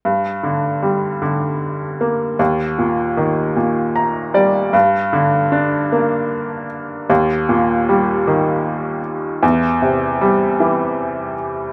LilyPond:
<<
  \new Staff \with { instrumentName = "Upright piano" } { \time 6/8 \key g \minor \tempo 4. = 51 r2. | r2 bes''8 d''8 | r2. | r2. |
r2. | }
  \new Staff \with { instrumentName = "Upright piano" } { \clef bass \time 6/8 \key g \minor g,8 d8 g8 d4 bes8 | ees,8 bes,8 ees8 bes,4 g8 | g,8 d8 d'8 bes4. | ees,8 bes,8 g8 ees4. |
e,8 c8 g8 e4. | }
>>